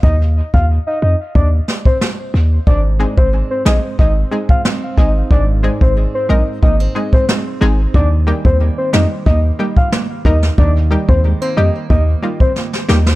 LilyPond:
<<
  \new Staff \with { instrumentName = "Soft synth lead" } { \time 4/4 \key ees \major \tempo 4 = 91 ees''16 r8 f''16 r16 ees''16 ees''16 r16 d''16 r8 c''16 r4 | d''16 r8 c''16 r16 c''16 ees''16 r16 ees''16 r8 f''16 r8 ees''16 r16 | d''16 r8 c''16 r16 c''16 ees''16 r16 ees''16 r8 c''16 r4 | d''16 r8 c''16 r16 c''16 ees''16 r16 ees''16 r8 f''16 r8 ees''16 r16 |
d''16 r8 c''16 r16 c''16 ees''16 r16 ees''16 r8 c''16 r4 | }
  \new Staff \with { instrumentName = "Synth pluck" } { \time 4/4 \key ees \major r1 | r8 <aes c' ees' aes'>8 r8 <aes c' ees' aes'>8 r8 <aes c' ees' aes'>8 r8 <aes c' ees' aes'>8 | r8 <aes c' ees' aes'>8 r8 <aes c' ees' bes'>8 r8 <aes c' ees' aes'>8 r8 <aes c' ees' aes'>8 | r8 <g bes ees' g'>8 r8 <g bes ees' g'>8 r8 <g bes ees' g'>8 r8 <g bes ees' bes'>8 |
r8 <g bes ees' g'>8 r8 <g bes ees' g'>8 r8 <g bes ees' f'>8 r8 <g bes ees' g'>8 | }
  \new Staff \with { instrumentName = "Steel-string acoustic guitar" } { \time 4/4 \key ees \major r1 | aes,8 aes8 c'8 aes8 c'8 aes8 c'8 ees'8 | aes,8 aes8 c'8 aes8 bes16 c'16 aes8 c'8 ees'8 | ees8 g8 bes8 g8 bes8 g8 bes8 ees'8 |
ees8 g8 aes16 bes16 g8 bes8 g8 bes8 ees'8 | }
  \new Staff \with { instrumentName = "808-style bass" } { \clef bass \time 4/4 \key ees \major ees,8. ees,8 r16 f,16 r16 ees,8 r4 ees,8 | aes,,8. aes,,8 r16 bes,,16 r16 aes,,8 r4 aes,,8 | aes,,8. aes,,8 r16 bes,,16 r16 aes,,8 r4 aes,,8 | ees,8. ees,8 r16 f,16 r16 ees,8 r4 ees,8 |
ees,8. ees,8 r16 f,16 r16 ees,8 r4 ees,8 | }
  \new DrumStaff \with { instrumentName = "Drums" } \drummode { \time 4/4 bd8. bd16 r4 bd8 sn16 bd16 <ss sn>4 | bd8. bd16 r8 <ss sn>8 bd8. bd16 <ss sn>8 bd8 | bd8. bd16 r4 bd8. bd16 <ss sn>4 | bd8. bd16 r8 <ss sn>8 bd8. bd16 <ss sn>8 bd16 sn16 |
bd8. bd16 r4 bd8. bd16 sn16 sn16 sn16 sn16 | }
>>